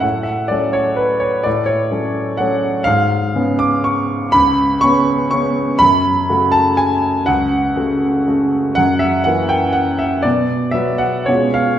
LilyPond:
<<
  \new Staff \with { instrumentName = "Grand piano" } { \time 3/4 \key fis \minor \tempo 4 = 123 fis''8 e''8 d''8 cis''8 b'8 cis''8 | d''8 cis''4. fis''4 | eis''4. d'''8 cis'''4 | b''4 cis'''4 cis'''4 |
b''4. a''8 gis''4 | fis''2 r4 | fis''8 e''8 fis''8 g''8 fis''8 e''8 | d''4 e''8 fis''8 cis''8 eis''8 | }
  \new Staff \with { instrumentName = "Grand piano" } { \time 3/4 \key fis \minor a,4 <fis a cis'>2 | a,4 <fis a cis'>4 <fis a cis'>4 | gis,4 <cis b cis'>2 | cis,4 <cis b cis'>4 <cis b cis'>4 |
fis,4 <cis a fis'>2 | cis,4 <cis a fis'>4 <cis a fis'>4 | fis,4 <e ais fis'>2 | b,4 <fis b fis'>4 <b, gis cis' eis'>4 | }
>>